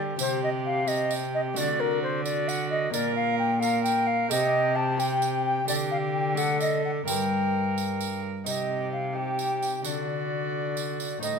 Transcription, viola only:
0, 0, Header, 1, 2, 480
1, 0, Start_track
1, 0, Tempo, 457317
1, 203, Time_signature, 6, 3, 24, 8
1, 5962, Tempo, 461894
1, 11896, End_track
2, 0, Start_track
2, 0, Title_t, "Viola"
2, 0, Program_c, 0, 41
2, 0, Note_on_c, 0, 67, 65
2, 191, Note_off_c, 0, 67, 0
2, 216, Note_on_c, 0, 67, 63
2, 918, Note_off_c, 0, 67, 0
2, 927, Note_on_c, 0, 67, 63
2, 1656, Note_on_c, 0, 66, 71
2, 1672, Note_off_c, 0, 67, 0
2, 2360, Note_off_c, 0, 66, 0
2, 2366, Note_on_c, 0, 66, 67
2, 3070, Note_off_c, 0, 66, 0
2, 3087, Note_on_c, 0, 70, 73
2, 3762, Note_off_c, 0, 70, 0
2, 3800, Note_on_c, 0, 70, 71
2, 4518, Note_on_c, 0, 67, 73
2, 4534, Note_off_c, 0, 70, 0
2, 5233, Note_off_c, 0, 67, 0
2, 5239, Note_on_c, 0, 67, 72
2, 5947, Note_off_c, 0, 67, 0
2, 5963, Note_on_c, 0, 67, 68
2, 6680, Note_on_c, 0, 69, 66
2, 6695, Note_off_c, 0, 67, 0
2, 7405, Note_off_c, 0, 69, 0
2, 7416, Note_on_c, 0, 70, 61
2, 8629, Note_off_c, 0, 70, 0
2, 8861, Note_on_c, 0, 67, 50
2, 9534, Note_off_c, 0, 67, 0
2, 9578, Note_on_c, 0, 67, 54
2, 10292, Note_on_c, 0, 66, 52
2, 10308, Note_off_c, 0, 67, 0
2, 11719, Note_off_c, 0, 66, 0
2, 11726, Note_on_c, 0, 63, 51
2, 11896, Note_off_c, 0, 63, 0
2, 11896, End_track
0, 0, End_of_file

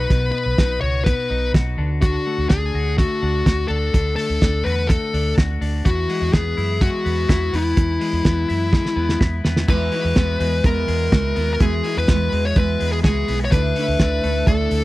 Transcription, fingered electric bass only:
0, 0, Header, 1, 2, 480
1, 0, Start_track
1, 0, Tempo, 478851
1, 106, Time_signature, 4, 2, 24, 8
1, 14877, End_track
2, 0, Start_track
2, 0, Title_t, "Fingered electric bass"
2, 0, Program_c, 0, 33
2, 103, Note_on_c, 0, 35, 89
2, 301, Note_off_c, 0, 35, 0
2, 461, Note_on_c, 0, 35, 76
2, 562, Note_off_c, 0, 35, 0
2, 586, Note_on_c, 0, 35, 96
2, 783, Note_off_c, 0, 35, 0
2, 824, Note_on_c, 0, 37, 69
2, 1121, Note_off_c, 0, 37, 0
2, 1307, Note_on_c, 0, 35, 81
2, 1504, Note_off_c, 0, 35, 0
2, 1549, Note_on_c, 0, 35, 88
2, 1745, Note_off_c, 0, 35, 0
2, 1781, Note_on_c, 0, 38, 78
2, 2177, Note_off_c, 0, 38, 0
2, 2389, Note_on_c, 0, 38, 77
2, 2487, Note_off_c, 0, 38, 0
2, 2512, Note_on_c, 0, 38, 85
2, 2707, Note_off_c, 0, 38, 0
2, 2750, Note_on_c, 0, 38, 79
2, 3044, Note_off_c, 0, 38, 0
2, 3234, Note_on_c, 0, 38, 78
2, 3429, Note_off_c, 0, 38, 0
2, 3471, Note_on_c, 0, 38, 90
2, 3667, Note_off_c, 0, 38, 0
2, 3704, Note_on_c, 0, 38, 84
2, 3903, Note_off_c, 0, 38, 0
2, 3953, Note_on_c, 0, 38, 89
2, 4148, Note_off_c, 0, 38, 0
2, 4306, Note_on_c, 0, 38, 75
2, 4406, Note_off_c, 0, 38, 0
2, 4432, Note_on_c, 0, 38, 94
2, 4628, Note_off_c, 0, 38, 0
2, 4670, Note_on_c, 0, 40, 80
2, 4966, Note_off_c, 0, 40, 0
2, 5150, Note_on_c, 0, 38, 78
2, 5347, Note_off_c, 0, 38, 0
2, 5393, Note_on_c, 0, 38, 93
2, 5589, Note_off_c, 0, 38, 0
2, 5626, Note_on_c, 0, 38, 79
2, 5825, Note_off_c, 0, 38, 0
2, 5870, Note_on_c, 0, 40, 92
2, 6068, Note_off_c, 0, 40, 0
2, 6229, Note_on_c, 0, 40, 77
2, 6329, Note_off_c, 0, 40, 0
2, 6351, Note_on_c, 0, 40, 95
2, 6548, Note_off_c, 0, 40, 0
2, 6595, Note_on_c, 0, 42, 86
2, 6889, Note_off_c, 0, 42, 0
2, 7074, Note_on_c, 0, 40, 84
2, 7270, Note_off_c, 0, 40, 0
2, 7309, Note_on_c, 0, 40, 89
2, 7507, Note_off_c, 0, 40, 0
2, 7551, Note_on_c, 0, 40, 81
2, 7748, Note_off_c, 0, 40, 0
2, 7791, Note_on_c, 0, 40, 91
2, 7989, Note_off_c, 0, 40, 0
2, 8148, Note_on_c, 0, 40, 79
2, 8248, Note_off_c, 0, 40, 0
2, 8268, Note_on_c, 0, 40, 89
2, 8467, Note_off_c, 0, 40, 0
2, 8520, Note_on_c, 0, 42, 76
2, 8812, Note_off_c, 0, 42, 0
2, 8984, Note_on_c, 0, 40, 90
2, 9184, Note_off_c, 0, 40, 0
2, 9230, Note_on_c, 0, 40, 89
2, 9428, Note_off_c, 0, 40, 0
2, 9478, Note_on_c, 0, 40, 87
2, 9672, Note_off_c, 0, 40, 0
2, 9709, Note_on_c, 0, 40, 94
2, 9907, Note_off_c, 0, 40, 0
2, 10070, Note_on_c, 0, 40, 81
2, 10169, Note_off_c, 0, 40, 0
2, 10193, Note_on_c, 0, 40, 101
2, 10389, Note_off_c, 0, 40, 0
2, 10429, Note_on_c, 0, 40, 90
2, 10627, Note_off_c, 0, 40, 0
2, 10669, Note_on_c, 0, 40, 104
2, 10867, Note_off_c, 0, 40, 0
2, 10910, Note_on_c, 0, 40, 93
2, 11107, Note_off_c, 0, 40, 0
2, 11150, Note_on_c, 0, 37, 78
2, 11347, Note_off_c, 0, 37, 0
2, 11395, Note_on_c, 0, 39, 83
2, 11590, Note_off_c, 0, 39, 0
2, 11633, Note_on_c, 0, 40, 105
2, 11829, Note_off_c, 0, 40, 0
2, 11999, Note_on_c, 0, 40, 80
2, 12094, Note_off_c, 0, 40, 0
2, 12117, Note_on_c, 0, 40, 94
2, 12311, Note_off_c, 0, 40, 0
2, 12357, Note_on_c, 0, 40, 86
2, 12551, Note_off_c, 0, 40, 0
2, 12594, Note_on_c, 0, 40, 108
2, 12789, Note_off_c, 0, 40, 0
2, 12843, Note_on_c, 0, 40, 87
2, 13034, Note_off_c, 0, 40, 0
2, 13074, Note_on_c, 0, 37, 85
2, 13268, Note_off_c, 0, 37, 0
2, 13319, Note_on_c, 0, 35, 75
2, 13511, Note_off_c, 0, 35, 0
2, 13552, Note_on_c, 0, 38, 103
2, 13747, Note_off_c, 0, 38, 0
2, 13917, Note_on_c, 0, 38, 87
2, 14012, Note_off_c, 0, 38, 0
2, 14028, Note_on_c, 0, 38, 97
2, 14224, Note_off_c, 0, 38, 0
2, 14273, Note_on_c, 0, 38, 88
2, 14467, Note_off_c, 0, 38, 0
2, 14505, Note_on_c, 0, 38, 96
2, 14702, Note_off_c, 0, 38, 0
2, 14750, Note_on_c, 0, 38, 89
2, 14877, Note_off_c, 0, 38, 0
2, 14877, End_track
0, 0, End_of_file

